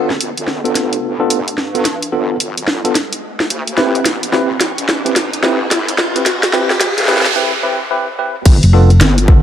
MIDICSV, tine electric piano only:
0, 0, Header, 1, 2, 480
1, 0, Start_track
1, 0, Tempo, 550459
1, 1616, Time_signature, 4, 2, 24, 8
1, 8219, End_track
2, 0, Start_track
2, 0, Title_t, "Tine electric piano"
2, 0, Program_c, 0, 4
2, 561, Note_on_c, 0, 62, 72
2, 562, Note_on_c, 0, 59, 80
2, 562, Note_on_c, 0, 65, 72
2, 562, Note_on_c, 0, 69, 87
2, 1007, Note_off_c, 0, 62, 0
2, 1008, Note_off_c, 0, 59, 0
2, 1008, Note_off_c, 0, 65, 0
2, 1008, Note_off_c, 0, 69, 0
2, 1043, Note_on_c, 0, 59, 85
2, 1044, Note_on_c, 0, 62, 82
2, 1045, Note_on_c, 0, 65, 82
2, 1045, Note_on_c, 0, 69, 94
2, 1208, Note_off_c, 0, 59, 0
2, 1208, Note_off_c, 0, 62, 0
2, 1209, Note_off_c, 0, 65, 0
2, 1209, Note_off_c, 0, 69, 0
2, 1523, Note_on_c, 0, 62, 73
2, 1523, Note_on_c, 0, 65, 75
2, 1525, Note_on_c, 0, 59, 80
2, 1525, Note_on_c, 0, 69, 85
2, 1608, Note_off_c, 0, 62, 0
2, 1608, Note_off_c, 0, 65, 0
2, 1609, Note_off_c, 0, 59, 0
2, 1609, Note_off_c, 0, 69, 0
2, 1853, Note_on_c, 0, 59, 78
2, 1853, Note_on_c, 0, 65, 72
2, 1853, Note_on_c, 0, 69, 89
2, 1854, Note_on_c, 0, 62, 73
2, 2049, Note_off_c, 0, 59, 0
2, 2049, Note_off_c, 0, 62, 0
2, 2049, Note_off_c, 0, 65, 0
2, 2049, Note_off_c, 0, 69, 0
2, 2481, Note_on_c, 0, 59, 83
2, 2481, Note_on_c, 0, 62, 77
2, 2481, Note_on_c, 0, 65, 78
2, 2482, Note_on_c, 0, 69, 92
2, 2567, Note_off_c, 0, 59, 0
2, 2567, Note_off_c, 0, 62, 0
2, 2567, Note_off_c, 0, 65, 0
2, 2567, Note_off_c, 0, 69, 0
2, 3290, Note_on_c, 0, 64, 85
2, 3290, Note_on_c, 0, 71, 97
2, 3291, Note_on_c, 0, 60, 89
2, 3291, Note_on_c, 0, 67, 83
2, 3533, Note_off_c, 0, 60, 0
2, 3533, Note_off_c, 0, 64, 0
2, 3533, Note_off_c, 0, 67, 0
2, 3533, Note_off_c, 0, 71, 0
2, 3770, Note_on_c, 0, 71, 92
2, 3771, Note_on_c, 0, 60, 79
2, 3772, Note_on_c, 0, 64, 76
2, 3772, Note_on_c, 0, 67, 74
2, 3913, Note_off_c, 0, 71, 0
2, 3914, Note_off_c, 0, 60, 0
2, 3914, Note_off_c, 0, 64, 0
2, 3914, Note_off_c, 0, 67, 0
2, 4404, Note_on_c, 0, 60, 73
2, 4404, Note_on_c, 0, 64, 67
2, 4404, Note_on_c, 0, 71, 80
2, 4405, Note_on_c, 0, 67, 69
2, 4480, Note_off_c, 0, 60, 0
2, 4480, Note_off_c, 0, 64, 0
2, 4480, Note_off_c, 0, 67, 0
2, 4480, Note_off_c, 0, 71, 0
2, 4732, Note_on_c, 0, 64, 79
2, 4732, Note_on_c, 0, 67, 74
2, 4733, Note_on_c, 0, 60, 84
2, 4733, Note_on_c, 0, 71, 87
2, 4874, Note_off_c, 0, 64, 0
2, 4874, Note_off_c, 0, 67, 0
2, 4874, Note_off_c, 0, 71, 0
2, 4875, Note_off_c, 0, 60, 0
2, 5368, Note_on_c, 0, 60, 73
2, 5369, Note_on_c, 0, 64, 64
2, 5369, Note_on_c, 0, 67, 69
2, 5369, Note_on_c, 0, 71, 82
2, 5442, Note_off_c, 0, 60, 0
2, 5442, Note_off_c, 0, 64, 0
2, 5442, Note_off_c, 0, 67, 0
2, 5443, Note_off_c, 0, 71, 0
2, 5698, Note_on_c, 0, 64, 78
2, 5699, Note_on_c, 0, 60, 91
2, 5699, Note_on_c, 0, 67, 83
2, 5700, Note_on_c, 0, 71, 98
2, 5837, Note_off_c, 0, 64, 0
2, 5837, Note_off_c, 0, 67, 0
2, 5838, Note_off_c, 0, 60, 0
2, 5838, Note_off_c, 0, 71, 0
2, 6177, Note_on_c, 0, 60, 90
2, 6177, Note_on_c, 0, 71, 104
2, 6179, Note_on_c, 0, 64, 83
2, 6179, Note_on_c, 0, 67, 78
2, 6317, Note_off_c, 0, 60, 0
2, 6317, Note_off_c, 0, 64, 0
2, 6317, Note_off_c, 0, 67, 0
2, 6317, Note_off_c, 0, 71, 0
2, 6415, Note_on_c, 0, 67, 84
2, 6416, Note_on_c, 0, 60, 92
2, 6418, Note_on_c, 0, 64, 86
2, 6418, Note_on_c, 0, 71, 98
2, 6556, Note_off_c, 0, 60, 0
2, 6556, Note_off_c, 0, 67, 0
2, 6557, Note_off_c, 0, 64, 0
2, 6557, Note_off_c, 0, 71, 0
2, 6655, Note_on_c, 0, 64, 82
2, 6656, Note_on_c, 0, 60, 93
2, 6656, Note_on_c, 0, 67, 84
2, 6656, Note_on_c, 0, 71, 100
2, 6796, Note_off_c, 0, 60, 0
2, 6796, Note_off_c, 0, 64, 0
2, 6796, Note_off_c, 0, 67, 0
2, 6796, Note_off_c, 0, 71, 0
2, 6895, Note_on_c, 0, 64, 89
2, 6895, Note_on_c, 0, 71, 100
2, 6896, Note_on_c, 0, 67, 87
2, 6897, Note_on_c, 0, 60, 98
2, 7036, Note_off_c, 0, 60, 0
2, 7036, Note_off_c, 0, 64, 0
2, 7036, Note_off_c, 0, 67, 0
2, 7036, Note_off_c, 0, 71, 0
2, 7138, Note_on_c, 0, 67, 83
2, 7139, Note_on_c, 0, 60, 87
2, 7139, Note_on_c, 0, 64, 81
2, 7140, Note_on_c, 0, 71, 100
2, 7277, Note_off_c, 0, 67, 0
2, 7278, Note_off_c, 0, 60, 0
2, 7278, Note_off_c, 0, 64, 0
2, 7278, Note_off_c, 0, 71, 0
2, 7616, Note_on_c, 0, 65, 84
2, 7616, Note_on_c, 0, 69, 101
2, 7617, Note_on_c, 0, 59, 87
2, 7617, Note_on_c, 0, 62, 85
2, 7756, Note_off_c, 0, 62, 0
2, 7756, Note_off_c, 0, 65, 0
2, 7756, Note_off_c, 0, 69, 0
2, 7757, Note_off_c, 0, 59, 0
2, 8219, End_track
0, 0, End_of_file